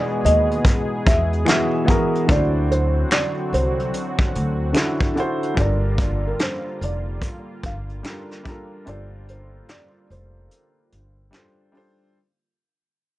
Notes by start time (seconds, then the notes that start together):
Already playing: B2 E3 G#3 B3 D#4 F#4 G#4 D5
0.24 D#2 D#5, closed hi-hat
0.51 closed hi-hat
0.65 kick, closed hi-hat
1.07 E2 E5, kick, closed hi-hat
1.33 closed hi-hat
1.45 E3 B3 F#4, finger snap, snare, closed hi-hat
1.49 G#4 E5
1.85 E3 B3 F#4, kick
1.89 G#4 A#4, closed hi-hat
2.15 closed hi-hat
2.27 D2 D3 F#3 C4 D4 E4 F#4, kick, closed hi-hat
2.31 F#4 C5 D5
2.71 C5, closed hi-hat
3.11 D5, finger snap, snare, closed hi-hat
3.53 C2 C5, closed hi-hat
3.79 closed hi-hat
3.94 closed hi-hat
4.19 kick
4.35 D2, closed hi-hat
4.73 D3 D4 E4, finger snap, snare, closed hi-hat
4.77 F#4 A4
5.00 kick
5.14 D3 D4 E4, closed hi-hat
5.18 F#4 C5
5.43 closed hi-hat
5.54 G1 G3 A#3 D4 F4, kick, closed hi-hat
5.58 A4 A#4 D5
5.98 kick, closed hi-hat
6.27 A#4
6.39 C5, finger snap, snare, closed hi-hat
6.81 F1 D5, closed hi-hat
7.22 kick, closed hi-hat
7.63 G1 F5, kick, closed hi-hat
7.89 closed hi-hat
8.03 G3 D4 F4, finger snap, snare, closed hi-hat
8.07 A4 A#4
8.31 snare
8.43 G3 D4 F4, kick, closed hi-hat
8.48 A4 A#4
8.85 G1 G3 D4 F4 A4 D5, closed hi-hat
8.90 C5
9.28 C5, closed hi-hat
9.68 D5, finger snap, snare, closed hi-hat
10.10 F1 C5, closed hi-hat
10.51 closed hi-hat
10.92 G1, closed hi-hat
11.31 G3 D4 F4, finger snap, snare, closed hi-hat
11.35 A4 C5
11.72 G3 D4 F4 A4, open hi-hat
11.77 C5